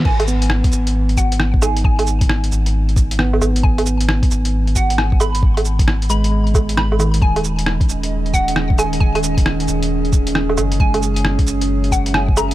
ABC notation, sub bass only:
X:1
M:4/4
L:1/8
Q:"Swing 16ths" 1/4=134
K:G#m
V:1 name="Sub bass" clef=bass
G,,,2 z G,,,4- G,,,- | G,,,3 G,,,4 G,,,- | G,,,2 z G,,,4- G,,,- | G,,,3 G,,,4- G,,, |
D,,,2 z D,,,4- D,,,- | D,,,3 D,,,4 F,,,- | F,,,2 z F,,,4- F,,, |]